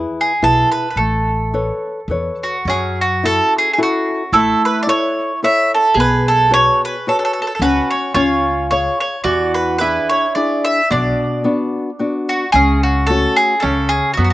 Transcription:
Already playing: nylon-string guitar E4 G#4 B4
0.21 mandolin G#4
0.42 upright bass B1, nylon-string guitar E4 G#4 B4, mandolin A4
0.72 mandolin B4
0.90 mandolin B4
0.96 upright bass A1, nylon-string guitar A3, mandolin A4
1.54 nylon-string guitar A4 B4 C#5
2.08 upright bass E2, nylon-string guitar A4 B4 C#5
2.43 mandolin F#4
2.65 upright bass F#2, nylon-string guitar F#3, mandolin C#4
2.70 mandolin G#4
3.01 mandolin F#4
3.23 nylon-string guitar E4 F#4 A4, mandolin A4
3.58 mandolin G#4
3.73 mandolin G#4
3.78 nylon-string guitar E4 F#4 A4
3.83 mandolin F#4
4.32 upright bass A1, nylon-string guitar A3, mandolin E4 A4
4.65 mandolin B4
4.83 mandolin D5
4.87 nylon-string guitar E4 A4 C#5, mandolin C#5
5.43 nylon-string guitar E4 A4 C#5, mandolin E5
5.75 mandolin A4
5.94 upright bass B1, nylon-string guitar B3, mandolin G#4
6.00 mandolin B4
6.28 mandolin A4
6.51 nylon-string guitar F#4 B4 C#5, mandolin C#5
6.85 mandolin B4
7.07 nylon-string guitar F#4 B4 C#5, mandolin A4
7.19 mandolin A4
7.25 mandolin A4
7.33 mandolin A4
7.42 mandolin A4
7.47 mandolin A4
7.55 mandolin A4
7.60 upright bass C#2, nylon-string guitar C#4, mandolin F#4 B4
7.91 mandolin C#5
8.14 upright bass C#2, nylon-string guitar C#4, mandolin F4 C#5
8.71 nylon-string guitar G#4 C#5 F5, mandolin C#5
9.00 mandolin C#5
9.24 upright bass E2, nylon-string guitar E3, mandolin F#4 D5
9.54 mandolin B4
9.78 nylon-string guitar D4 E4 G#4, mandolin E4 B4
10.09 mandolin C#5
10.35 nylon-string guitar D4 E4 G#4, mandolin D5
10.65 mandolin E5
10.90 upright bass B1, nylon-string guitar B2, mandolin D4 D5
11.44 nylon-string guitar B3 D4 F#4
11.99 nylon-string guitar B3 D4 F#4
12.29 mandolin F#4
12.52 upright bass C#2, nylon-string guitar C#3, mandolin C#4 G#4
12.83 mandolin F#4
13.07 nylon-string guitar A3 C#4 F#4, mandolin A4
13.36 mandolin G#4
13.60 upright bass C#2, mandolin C#4 A4
13.64 nylon-string guitar C#3
13.89 mandolin G#4
14.14 mandolin B3 F#4
14.18 upright bass F#2, nylon-string guitar F#3
14.24 mandolin F#4

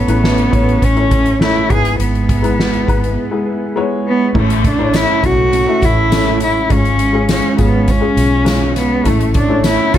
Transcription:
Already playing: upright piano A2 A3 C#4 E4 C#5, cello B3, clean electric guitar C#4 E4 A4
0.07 fingered electric bass A1, upright piano A3 C#4 E4 B4, closed hi-hat
0.22 clean electric guitar A3 C#4 E4 A4, snare
0.38 closed hi-hat
0.50 fingered electric bass A1, upright piano A3 C#4 E4 C#5, clean electric guitar E4 A4, kick, closed hi-hat
0.56 clean electric guitar C#4
0.69 closed hi-hat
0.82 fingered electric bass A1, cello C#4, kick, closed hi-hat
0.95 upright piano A3 C#4 E4 C#5, closed hi-hat
1.10 clean electric guitar C#4 E4 A4, kick, closed hi-hat
1.26 closed hi-hat
1.39 clean electric guitar A3 C#4 E4 A4, upright piano A3 C#4 E4 C#5, cello E4, snare
1.69 fingered electric bass G#1, upright piano G#2 G#3 B3 E4 B4, clean electric guitar G#3 B3 E4 G#4, cello G#4, kick, closed hi-hat
1.85 closed hi-hat
1.99 fingered electric bass G#1, cello B3, closed hi-hat
2.15 closed hi-hat
2.28 clean electric guitar B3 E4 G#4, kick, closed hi-hat
2.42 upright piano G#3 B3 E4 B4, closed hi-hat
2.57 clean electric guitar G#3 B3 E4 G#4, snare
2.74 closed hi-hat
2.87 fingered electric bass G#1, upright piano G#3 B3 E4 B4, clean electric guitar B3 E4 G#4, kick, closed hi-hat
3.04 closed hi-hat
3.31 upright piano G#3 B3 E4 G#4
3.46 clean electric guitar B3 E4 G#4
3.75 clean electric guitar G#3 B3 E4 G#4, upright piano G#3 B3 E4 C#5
4.08 cello B3
4.34 fingered electric bass A1, clean electric guitar A2 A3 C#4 E4 A4, upright piano A2 A3 C#4 E4 C#5, cello A3, kick, crash
4.50 closed hi-hat
4.64 clean electric guitar C#4 E4 A4, cello D4, kick, closed hi-hat, tambourine
4.78 upright piano A3 C#4 E4 C#5
4.93 clean electric guitar A2 A3 C#4 E4 A4, cello E4, snare, closed hi-hat, tambourine
5.23 fingered electric bass B1, upright piano A3 C#4 E4 F#4, cello F#4, kick, closed hi-hat, tambourine
5.51 clean electric guitar A3 C#4 E4 A4, closed hi-hat, tambourine
5.67 upright piano A3 C#4 E4 E5
5.81 fingered electric bass A1, clean electric guitar C#4 E4 A4, cello E4, kick, closed hi-hat, tambourine
6.10 clean electric guitar A2 A3 C#4 E4 A4, upright piano A3 C#4 E4 A4, snare, closed hi-hat, tambourine
6.40 clean electric guitar C#4 A4, cello E4, closed hi-hat, tambourine
6.69 fingered electric bass G#1, upright piano G#2 G#3 C#4 F4 C#5, clean electric guitar G#3 C#4 F4 G#4, cello C#4, kick, closed hi-hat, tambourine
6.85 closed hi-hat
6.99 clean electric guitar C#4 F4 G#4, closed hi-hat, tambourine
7.13 upright piano G#3 C#4 F4 G#4
7.29 clean electric guitar G#3 C#4 F4 G#4, cello C#4, snare, closed hi-hat, tambourine
7.57 fingered electric bass G#1, upright piano G#3 C#4 F4 G#4, kick, closed hi-hat, tambourine
7.61 cello B3
7.88 clean electric guitar G#3 C#4 F4 G#4, cello C#4, kick, closed hi-hat, tambourine
8.00 upright piano G#3 C#4 F4 G#4
8.17 fingered electric bass B1, clean electric guitar C#4 F4 G#4, closed hi-hat, tambourine
8.45 upright piano G#3 C#4 F4 C#5, clean electric guitar G#3 C#4 F4, snare, closed hi-hat, tambourine
8.49 clean electric guitar G#4
8.76 cello B3, clean electric guitar C#4 F4 G#4, snare, closed hi-hat, tambourine
9.04 fingered electric bass A1, upright piano A2 A3 C#4 E4 C#5, clean electric guitar A2 A3 C#4 E4 A4, cello A3, kick, closed hi-hat, tambourine
9.20 closed hi-hat
9.34 clean electric guitar C#4 E4 A4, cello D4, kick, closed hi-hat, tambourine
9.49 upright piano A3 C#4 E4 C#5
9.64 clean electric guitar A2 A3 C#4 E4 A4, cello E4, snare, closed hi-hat, tambourine
9.93 fingered electric bass B1, upright piano A3 C#4 E4 C#5, kick, closed hi-hat, tambourine

